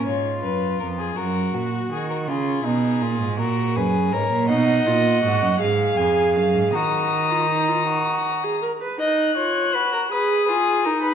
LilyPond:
<<
  \new Staff \with { instrumentName = "Violin" } { \time 6/8 \key cis \dorian \tempo 4. = 54 cis''8 b'8 ais'16 gis'16 ais'8 fis'8 gis'16 ais'16 | gis'4. ais'8 b'8 cis''8 | \key ees \minor ges''4. f''8 aes''8 f''8 | ees'''2~ ees'''8 r8 |
ges'''4. ees'''4. | }
  \new Staff \with { instrumentName = "Violin" } { \time 6/8 \key cis \dorian eis'4. fis'4. | eis'8 dis'8 eis'8 fis'8 gis'8 ais'8 | \key ees \minor ees''4. f''4. | bes''2~ bes''8 r8 |
ees''8 des''8 ces''16 bes'16 ces''8 aes'8 bes'16 ces''16 | }
  \new Staff \with { instrumentName = "Viola" } { \time 6/8 \key cis \dorian r2. | r2. | \key ees \minor ees'8 f'8 ges'8 aes'4. | ges'8. f'16 ees'16 f'16 ges'8. aes'16 bes'16 ces''16 |
ees'8 f'8 ges'8 aes'8 f'8 ees'8 | }
  \new Staff \with { instrumentName = "Cello" } { \clef bass \time 6/8 \key cis \dorian gis,8 fis,8 eis,8 fis,8 ais,8 dis8 | cis8 b,8 ais,16 gis,16 ais,8 fis,8 gis,16 ais,16 | \key ees \minor ces8 bes,8 aes,16 ges,16 aes,8 f,8 ges,16 aes,16 | ees2~ ees8 r8 |
r2. | }
>>